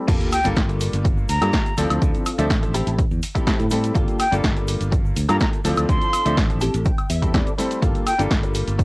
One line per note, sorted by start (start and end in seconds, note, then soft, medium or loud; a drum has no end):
0.08 0.17 G1 loud
0.08 0.39 A#3 loud
0.08 0.27 A#3 medium
0.08 0.27 D4 medium
0.08 0.39 F4 loud
0.08 0.28 F4 medium
0.08 0.39 G4 loud
0.08 0.39 A4 loud
0.08 0.28 A4 medium
0.08 kick loud
0.08 closed hi-hat medium
0.08 crash loud
0.08 sub drop medium
0.08 shaker medium
0.08 shaker soft
0.21 closed hi-hat soft
0.21 shaker soft
0.32 0.47 G5 loud
0.32 open hi-hat loud
0.32 high woodblock medium
0.32 shaker medium
0.44 0.53 G1 loud
0.44 1.26 G3 loud
0.44 1.26 A#3 medium
0.44 1.26 D4 medium
0.44 1.27 F4 medium
0.44 closed hi-hat medium
0.44 shaker soft
0.45 1.27 A4 loud
0.45 shaker soft
0.56 0.88 G1 loud
0.56 kick loud
0.56 snare loud
0.56 closed hi-hat medium
0.56 shaker soft
0.69 muted clean electric guitar stroke loud
0.69 closed hi-hat soft
0.69 shaker soft
0.80 muted clean electric guitar stroke soft
0.80 open hi-hat loud
0.80 shaker loud
0.80 shaker medium
0.93 1.24 G1 loud
0.93 closed hi-hat medium
0.93 shaker soft
1.05 muted clean electric guitar stroke medium
1.05 kick loud
1.05 closed hi-hat medium
1.05 shaker soft
1.17 muted clean electric guitar stroke soft
1.17 shaker soft
1.29 1.38 D2 medium
1.29 1.78 A#5 medium
1.29 open hi-hat loud
1.29 shaker loud
1.29 shaker medium
1.41 1.50 G2 medium
1.41 1.53 G3 medium
1.41 1.53 A#3 medium
1.41 1.72 A#3 medium
1.41 1.53 D4 medium
1.41 1.53 F4 medium
1.41 1.72 F4 medium
1.41 1.72 G4 medium
1.41 1.53 A4 medium
1.41 1.72 A4 loud
1.41 closed hi-hat medium
1.41 high woodblock medium
1.41 shaker soft
1.53 kick loud
1.53 snare loud
1.53 closed hi-hat medium
1.53 shaker medium
1.53 shaker soft
1.66 closed hi-hat soft
1.66 shaker soft
1.77 1.87 D2 medium
1.77 1.99 F3 medium
1.77 1.99 C4 medium
1.77 2.46 C4 medium
1.77 1.99 D4 medium
1.77 2.46 D4 medium
1.77 1.99 E4 medium
1.77 2.46 F4 medium
1.77 1.99 A4 loud
1.77 2.46 A4 loud
1.77 open hi-hat loud
1.77 shaker loud
1.77 shaker medium
1.90 1.98 D2 medium
1.90 closed hi-hat medium
1.90 high woodblock medium
1.90 shaker soft
2.01 2.21 F3 medium
2.01 2.21 C4 medium
2.01 2.21 D4 medium
2.01 2.21 E4 medium
2.01 2.21 A4 medium
2.01 kick loud
2.01 closed hi-hat medium
2.01 shaker medium
2.01 shaker soft
2.15 closed hi-hat soft
2.15 shaker soft
2.26 open hi-hat loud
2.26 high woodblock medium
2.26 shaker loud
2.26 shaker medium
2.38 2.47 D2 loud
2.38 2.73 F3 loud
2.38 2.73 C4 medium
2.38 2.73 D4 medium
2.38 2.73 A4 loud
2.38 2.73 E5 medium
2.38 closed hi-hat medium
2.38 shaker soft
2.50 2.81 A1 loud
2.50 kick loud
2.50 snare loud
2.50 closed hi-hat medium
2.50 shaker medium
2.50 shaker soft
2.63 muted clean electric guitar stroke medium
2.63 closed hi-hat soft
2.63 shaker soft
2.74 3.04 C4 medium
2.74 3.04 E4 medium
2.74 3.04 G4 medium
2.74 3.04 A4 loud
2.74 open hi-hat loud
2.74 shaker medium
2.86 3.04 A1 loud
2.86 closed hi-hat medium
2.86 shaker soft
2.99 kick loud
2.99 closed hi-hat medium
2.99 shaker medium
2.99 shaker soft
3.11 3.19 E2 medium
3.11 muted clean electric guitar stroke soft
3.11 shaker soft
3.23 open hi-hat loud
3.23 shaker loud
3.23 shaker medium
3.35 3.47 G3 medium
3.35 3.47 A3 medium
3.35 3.47 C4 medium
3.35 3.65 C4 medium
3.35 3.65 E4 medium
3.35 3.47 E4 medium
3.35 3.65 G4 medium
3.35 3.66 A4 loud
3.35 3.47 A4 medium
3.35 kick medium
3.35 closed hi-hat medium
3.35 shaker soft
3.47 kick loud
3.47 snare loud
3.47 closed hi-hat medium
3.47 shaker medium
3.47 shaker soft
3.59 3.90 A2 medium
3.59 closed hi-hat soft
3.59 shaker soft
3.70 3.92 G3 medium
3.70 3.93 A3 medium
3.70 3.93 C4 medium
3.70 3.93 E4 medium
3.70 3.93 A4 loud
3.70 open hi-hat loud
3.70 shaker medium
3.84 closed hi-hat medium
3.84 shaker soft
3.95 4.04 G1 loud
3.95 4.14 G3 medium
3.95 4.26 A#3 loud
3.95 4.14 A#3 medium
3.95 4.15 D4 medium
3.95 4.26 F4 loud
3.95 4.15 F4 medium
3.95 4.26 G4 loud
3.95 4.26 A4 loud
3.95 kick loud
3.95 closed hi-hat medium
3.95 shaker medium
3.95 shaker soft
4.08 closed hi-hat soft
4.08 shaker soft
4.20 4.34 G5 loud
4.20 open hi-hat loud
4.20 high woodblock medium
4.20 shaker medium
4.31 4.40 G1 loud
4.31 5.13 G3 loud
4.31 5.13 A#3 medium
4.31 5.14 D4 medium
4.31 5.14 F4 medium
4.31 5.14 A4 loud
4.31 closed hi-hat medium
4.31 shaker soft
4.44 4.75 G1 loud
4.44 kick loud
4.44 snare loud
4.44 closed hi-hat medium
4.44 shaker medium
4.44 shaker soft
4.56 muted clean electric guitar stroke medium
4.56 closed hi-hat soft
4.56 shaker soft
4.67 muted clean electric guitar stroke soft
4.67 open hi-hat loud
4.67 shaker medium
4.80 5.11 G1 loud
4.80 closed hi-hat medium
4.80 shaker soft
4.92 muted clean electric guitar stroke medium
4.92 kick loud
4.92 closed hi-hat medium
4.92 shaker soft
5.04 muted clean electric guitar stroke soft
5.04 shaker soft
5.16 5.25 D2 medium
5.16 open hi-hat loud
5.16 shaker loud
5.16 shaker medium
5.28 5.37 G2 medium
5.28 5.40 G3 medium
5.28 5.40 A#3 medium
5.28 5.59 A#3 medium
5.28 5.40 D4 medium
5.28 5.40 F4 medium
5.28 5.59 F4 medium
5.28 5.59 G4 medium
5.28 5.59 A4 loud
5.28 5.40 A4 medium
5.28 5.37 A#5 medium
5.28 closed hi-hat medium
5.28 high woodblock medium
5.28 shaker soft
5.40 5.49 A#5 medium
5.40 kick loud
5.40 snare loud
5.40 closed hi-hat medium
5.40 shaker medium
5.40 shaker soft
5.53 closed hi-hat soft
5.53 shaker soft
5.64 5.74 D2 medium
5.64 5.86 F3 loud
5.64 5.86 C4 medium
5.64 6.33 C4 medium
5.64 5.86 D4 medium
5.64 6.33 D4 medium
5.64 5.86 E4 medium
5.64 6.33 F4 medium
5.64 5.86 A4 loud
5.64 6.33 A4 loud
5.64 open hi-hat loud
5.64 shaker loud
5.64 shaker medium
5.77 5.86 D2 loud
5.77 closed hi-hat medium
5.77 high woodblock medium
5.77 shaker soft
5.89 5.98 D2 loud
5.89 6.08 F3 medium
5.89 6.08 C4 medium
5.89 6.08 D4 medium
5.89 6.08 E4 medium
5.89 6.08 A4 medium
5.89 6.38 C6 loud
5.89 kick loud
5.89 closed hi-hat medium
5.89 shaker soft
5.89 shaker medium
6.01 closed hi-hat soft
6.01 shaker soft
6.13 open hi-hat loud
6.13 high woodblock medium
6.13 shaker medium
6.13 shaker loud
6.25 6.34 D2 loud
6.25 6.60 F3 loud
6.25 6.60 C4 medium
6.25 6.60 D4 medium
6.25 6.60 A4 loud
6.25 6.60 E5 medium
6.25 closed hi-hat medium
6.25 shaker soft
6.37 6.68 A1 loud
6.37 kick loud
6.37 snare loud
6.37 closed hi-hat medium
6.37 shaker soft
6.37 shaker medium
6.50 muted clean electric guitar stroke medium
6.50 closed hi-hat soft
6.50 shaker soft
6.61 6.91 C4 medium
6.61 6.91 E4 medium
6.61 6.91 G4 medium
6.61 6.91 A4 loud
6.61 6.84 A5 medium
6.61 open hi-hat loud
6.61 shaker loud
6.61 shaker medium
6.74 6.91 A1 loud
6.74 closed hi-hat soft
6.74 shaker soft
6.85 7.08 G5 medium
6.85 kick loud
6.85 closed hi-hat medium
6.85 shaker medium
6.85 shaker soft
6.98 muted clean electric guitar stroke soft
6.98 muted fingered electric bass stroke soft
6.98 closed hi-hat soft
6.98 high woodblock medium
6.98 shaker soft
7.10 7.41 E2 medium
7.10 7.32 E5 medium
7.10 open hi-hat loud
7.10 shaker loud
7.10 shaker medium
7.22 7.34 G3 medium
7.22 7.34 A3 medium
7.22 7.34 C4 medium
7.22 7.52 C4 medium
7.22 7.53 E4 medium
7.22 7.34 E4 medium
7.22 7.53 G4 medium
7.22 7.53 A4 loud
7.22 7.34 A4 medium
7.22 kick medium
7.22 closed hi-hat medium
7.22 shaker soft
7.34 7.57 D5 medium
7.34 kick loud
7.34 snare loud
7.34 closed hi-hat medium
7.34 shaker medium
7.34 shaker soft
7.47 closed hi-hat soft
7.47 shaker soft
7.58 7.79 G3 loud
7.58 7.80 A3 medium
7.58 7.80 C4 medium
7.58 7.80 E4 medium
7.58 7.80 A4 loud
7.58 7.81 C5 medium
7.58 open hi-hat loud
7.58 shaker medium
7.58 shaker loud
7.71 closed hi-hat soft
7.71 shaker soft
7.82 7.91 G1 loud
7.82 8.01 G3 medium
7.82 8.13 A#3 loud
7.82 8.02 A#3 medium
7.82 8.02 D4 medium
7.82 8.13 F4 loud
7.82 8.02 F4 medium
7.82 8.13 G4 loud
7.82 8.02 A4 medium
7.82 8.13 A4 loud
7.82 kick loud
7.82 closed hi-hat medium
7.82 shaker soft
7.82 shaker medium
7.95 closed hi-hat soft
7.95 shaker soft
8.07 8.21 G5 loud
8.07 open hi-hat loud
8.07 high woodblock medium
8.07 shaker loud
8.07 shaker medium
8.18 8.27 G1 loud
8.18 8.84 G3 loud
8.18 8.84 A#3 medium
8.18 8.84 D4 medium
8.18 8.84 F4 medium
8.18 8.84 A4 loud
8.18 closed hi-hat medium
8.18 shaker soft
8.31 kick loud
8.31 snare loud
8.31 closed hi-hat medium
8.31 shaker medium
8.31 shaker soft
8.43 muted clean electric guitar stroke medium
8.43 closed hi-hat soft
8.43 shaker soft
8.55 muted clean electric guitar stroke soft
8.55 open hi-hat loud
8.55 shaker medium
8.68 8.84 G1 loud
8.68 closed hi-hat medium
8.68 shaker soft
8.79 muted clean electric guitar stroke medium
8.79 kick loud
8.79 closed hi-hat medium
8.79 shaker soft